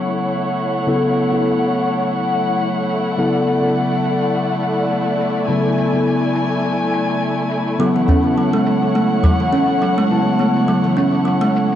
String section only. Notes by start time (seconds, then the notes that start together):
Already playing: A3 E4 C#5 F#5
3.18 D5
5.49 G#5
7.80 C#5 F#5